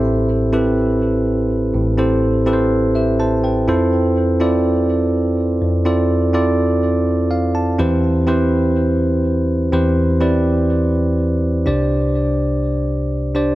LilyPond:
<<
  \new Staff \with { instrumentName = "Tine electric piano" } { \time 4/4 \key c \major \tempo 4 = 124 << { r1 | r2 <g' e''>8 <c'' a''>8 <b' g''>4 | r1 | r2. f''8 a''8 |
r1 | r1 | r1 | } \\ { <c' e' g' a' c''>8 r8 <c' e' g' a' b'>4~ <c' e' g' a' b'>16 r4. r16 | <c' e' g' a' c''>8 r8 <c' e' g' a' b' c''>4~ <c' e' g' a' b' c''>16 r4 r16 <c' e' f' a' c''>8~ | <c' e' f' a' c''>8 r8 <c' e' f' a' d''>4~ <c' e' f' a' d''>16 r4. r16 | <c' e' f' a' d''>8 r8 <c' e' f' a' d''>4~ <c' e' f' a' d''>16 r4. r16 |
<c' e' g' b' c''>8 r8 <c' e' g' b' c''>4~ <c' e' g' b' c''>16 r4. r16 | <c' e' g' b' c''>8 r8 <c' e' g' b' d''>4~ <c' e' g' b' d''>16 r4. r16 | <d' g' c'' d''>4~ <d' g' c'' d''>16 r2 r16 <d' g' c'' d''>8 | } >> }
  \new Staff \with { instrumentName = "Tine electric piano" } { \clef bass \time 4/4 \key c \major <a,, a,>2.~ <a,, a,>8 <a,, a,>8~ | <a,, a,>2.~ <a,, a,>8 f,8~ | f,2.~ f,8 f,8~ | f,2.~ f,8 r8 |
<e, e>1 | <e, e>1 | <c, c>1 | }
>>